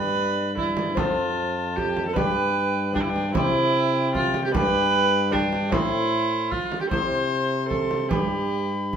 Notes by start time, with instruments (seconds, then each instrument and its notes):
Already playing: trombone G2, lute G2 B3 D4 G4, viola B4, recorder D5
0.57 viola E4, frame drum
0.77 frame drum
0.95 trombone F2, lute C4 F4 A4, viola F4, recorder A5, frame drum
0.99 lute F2
1.77 viola G4, frame drum
1.97 frame drum
2.08 viola A4
2.14 trombone G2, lute B3 D4 G4, viola B4, recorder G5, frame drum
2.18 lute G2
2.92 lute B3 D4 G4, viola D4, recorder G5, frame drum
3.03 viola E4
3.09 viola D4
3.16 frame drum
3.33 trombone C3, lute C3 C4 E4 G4, viola E4, recorder G5, frame drum
4.15 viola F4, frame drum
4.34 frame drum
4.45 viola G4
4.51 trombone G2, lute G2 B3 D4 G4, viola B4, frame drum
4.56 recorder G5
5.30 lute B3 D4 G4, viola D4, recorder G5, frame drum
5.53 frame drum
5.69 lute A3 C4 E4, viola E4, recorder C6, frame drum
5.73 trombone A2, lute A2
6.51 viola F4, frame drum
6.72 frame drum
6.81 viola G4
6.90 trombone C3, lute C3 C4 E4, viola C5, recorder C6, frame drum
7.69 viola A4, frame drum
7.91 frame drum
8.09 lute G2 B3 D4, trombone G2, viola G4, recorder B5, frame drum
8.93 frame drum